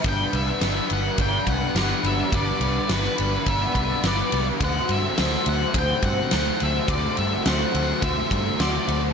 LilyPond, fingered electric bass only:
\new Staff \with { instrumentName = "Fingered electric bass" } { \clef bass \time 4/4 \key g \major \tempo 4 = 105 g,,8 c,8 g,,8 g,,8 g,,8 c,8 g,,8 g,,8 | g,,8 c,8 g,,8 g,,8 g,,8 c,8 g,,8 c,8 | d,8 g,8 d,8 d,8 d,8 g,8 d,8 d,8 | d,8 g,8 d,8 d,8 d,8 g,8 d,8 d,8 | }